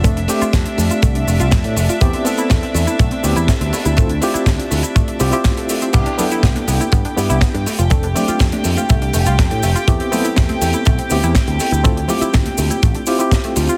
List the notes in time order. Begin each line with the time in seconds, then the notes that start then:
Already playing: F1 D4 E5
0.03 A3 C4 D4 A4, kick, closed hi-hat, cabasa
0.17 D4, closed hi-hat
0.28 A3 C4 D4 G4, open hi-hat, cabasa
0.41 F4, muted picked electric bass stroke, closed hi-hat, cabasa
0.53 F2 A3, kick, snare, closed hi-hat, cabasa
0.66 D4, closed hi-hat
0.78 F2 A3, open hi-hat, cabasa
0.90 F4, closed hi-hat, cabasa
1.02 C2 A3, kick, closed hi-hat, cabasa
1.15 D4, closed hi-hat
1.27 F1 A3, open hi-hat, cabasa
1.40 C2 F4, closed hi-hat, cabasa
1.51 F2 A3, kick, snare, closed hi-hat, cabasa
1.64 A2 D4, closed hi-hat
1.76 F1 A3, open hi-hat, cabasa
1.89 F4, closed hi-hat, cabasa
2.01 E2 A3 B3 C4 E4 G4, kick, closed hi-hat, cabasa
2.13 C4, closed hi-hat
2.24 A3 B3 C4 E4 A4, open hi-hat, cabasa
2.38 E4, closed hi-hat, cabasa
2.50 E2 A3, kick, snare, closed hi-hat, cabasa
2.63 C4, closed hi-hat
2.74 E2 A3, open hi-hat, cabasa
2.87 E4, closed hi-hat, cabasa
2.99 B1 A3, kick, closed hi-hat, cabasa
3.11 C4, closed hi-hat
3.23 D2 A3 B3 C4 E4 G4, open hi-hat, cabasa
3.36 E2 E4, closed hi-hat, cabasa
3.48 A3, kick, snare, closed hi-hat, cabasa
3.61 D2 C4, closed hi-hat
3.73 A3, open hi-hat, cabasa
3.85 D2 E4, closed hi-hat, cabasa
3.97 A3 C4 E4 F4 A4, kick, closed hi-hat, cabasa
4.09 D4, closed hi-hat
4.21 A3 C4 E4 F4 G4, open hi-hat, cabasa
4.34 E4, muted picked electric bass stroke, closed hi-hat, cabasa
4.46 D2 A3, kick, snare, closed hi-hat, cabasa
4.58 D4, closed hi-hat
4.71 D2 A3, open hi-hat, cabasa
4.83 E4, closed hi-hat, cabasa
4.96 A3, kick, closed hi-hat, cabasa
5.08 D4, closed hi-hat
5.20 C2 C4 E4 F4 G4, open hi-hat, cabasa
5.31 C4 E4 F4 G4, closed hi-hat, cabasa
5.44 A3, kick, snare, closed hi-hat, cabasa
5.57 A4, closed hi-hat
5.69 A3, open hi-hat, cabasa
5.82 C4, closed hi-hat, cabasa
5.93 C2 B3 D4 E4 G4 G5, kick, closed hi-hat, crash, cabasa
6.06 D4, closed hi-hat
6.18 B3 D4 E4 A4, open hi-hat, high conga, low conga, cabasa
6.31 E4, closed hi-hat, cabasa
6.43 C2 B3, kick, snare, closed hi-hat, cabasa
6.56 D4, closed hi-hat, high conga
6.68 C2 B3, open hi-hat, cabasa
6.81 E4, closed hi-hat, high conga, cabasa
6.92 G2 B3, kick, closed hi-hat, cabasa
7.05 D4, closed hi-hat
7.17 G2 B3 D4 E4 G4, open hi-hat, cabasa
7.30 C2 E4, closed hi-hat, cabasa
7.41 B3, kick, snare, closed hi-hat, cabasa
7.54 G2 D4, closed hi-hat
7.66 A3, open hi-hat, cabasa
7.79 F1 F4, closed hi-hat, cabasa
7.90 A3 C4 D4 A4, kick, closed hi-hat, cabasa
8.03 D4, closed hi-hat
8.14 A3 C4 D4 G4, open hi-hat, high conga, low conga, cabasa
8.28 F4, muted picked electric bass stroke, closed hi-hat, cabasa
8.39 F2 A3, kick, snare, closed hi-hat, cabasa
8.52 D4, closed hi-hat, high conga
8.64 F2 A3, open hi-hat, cabasa
8.77 F4, closed hi-hat, high conga, cabasa
8.89 C2 A3, kick, closed hi-hat, cabasa
9.02 D4, closed hi-hat
9.13 F1 A3, open hi-hat, cabasa
9.26 C2 F4, closed hi-hat, cabasa
9.39 F2 A3, kick, snare, closed hi-hat, cabasa
9.51 A2 D4, closed hi-hat
9.63 F1 A3, open hi-hat, cabasa
9.75 F4, closed hi-hat, cabasa
9.88 E2 A3 B3 C4 E4 G4, kick, closed hi-hat, cabasa
10.00 C4, closed hi-hat
10.12 A3 B3 C4 E4 A4, open hi-hat, high conga, low conga, cabasa
10.25 E4, closed hi-hat, cabasa
10.36 E2 A3, kick, snare, closed hi-hat, cabasa
10.49 C4, closed hi-hat, high conga
10.61 E2 A3, open hi-hat, cabasa
10.73 E4, closed hi-hat, high conga, cabasa
10.85 B1 A3, kick, closed hi-hat, cabasa
10.99 C4, closed hi-hat
11.10 D2 A3 B3 C4 E4 G4, open hi-hat, cabasa
11.23 E2 E4, closed hi-hat, cabasa
11.35 A3, kick, snare, closed hi-hat, cabasa
11.48 D2 C4, closed hi-hat
11.60 A3, open hi-hat, cabasa
11.71 D2 E4, closed hi-hat, cabasa
11.84 A3 C4 E4 F4 A4, kick, closed hi-hat, cabasa
11.97 D4, closed hi-hat
12.08 A3 C4 E4 F4 G4, open hi-hat, high conga, low conga, cabasa
12.21 E4, muted picked electric bass stroke, closed hi-hat, cabasa
12.33 D2 A3, kick, snare, closed hi-hat, cabasa
12.46 D4, closed hi-hat, high conga
12.58 D2 A3, open hi-hat, cabasa
12.70 E4, closed hi-hat, high conga, cabasa
12.83 A1 A3, kick, closed hi-hat, cabasa
12.95 D4, closed hi-hat
13.06 C4 E4 F4 G4, open hi-hat, cabasa
13.19 C4 E4 F4 G4, closed hi-hat, cabasa
13.31 G4, kick, snare, closed hi-hat, cabasa
13.44 A3, closed hi-hat
13.56 D2 F4, open hi-hat, cabasa
13.67 F4, closed hi-hat, cabasa